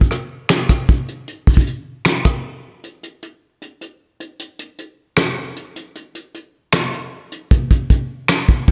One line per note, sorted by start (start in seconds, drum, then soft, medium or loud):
0.01 kick loud
0.11 cross-stick medium
0.11 closed hi-hat medium
0.49 finger snap medium
0.49 snare loud
0.49 closed hi-hat medium
0.69 kick medium
0.69 cross-stick loud
0.69 closed hi-hat medium
0.89 kick loud
1.08 closed hi-hat medium
1.28 closed hi-hat medium
1.47 kick loud
1.47 closed hi-hat medium
1.47 open hi-hat medium
1.54 kick loud
1.54 closed hi-hat medium
1.60 closed hi-hat medium
1.67 closed hi-hat medium
2.05 finger snap medium
2.05 snare loud
2.05 closed hi-hat medium
2.25 kick loud
2.25 cross-stick loud
2.84 closed hi-hat medium
3.03 closed hi-hat medium
3.23 closed hi-hat medium
3.62 closed hi-hat medium
3.81 closed hi-hat medium
4.20 closed hi-hat medium
4.39 closed hi-hat medium
4.59 closed hi-hat medium
4.78 closed hi-hat medium
5.17 finger snap medium
5.17 snare loud
5.17 closed hi-hat medium
5.56 closed hi-hat medium
5.76 closed hi-hat medium
5.95 closed hi-hat medium
6.15 closed hi-hat medium
6.34 closed hi-hat medium
6.73 finger snap medium
6.73 snare loud
6.73 closed hi-hat medium
6.93 closed hi-hat medium
7.32 closed hi-hat medium
7.51 kick loud
7.51 closed hi-hat medium
7.71 kick medium
7.71 closed hi-hat medium
7.90 kick medium
7.90 closed hi-hat medium
8.28 finger snap medium
8.28 snare loud
8.28 closed hi-hat medium
8.49 kick medium
8.68 kick loud
8.68 crash medium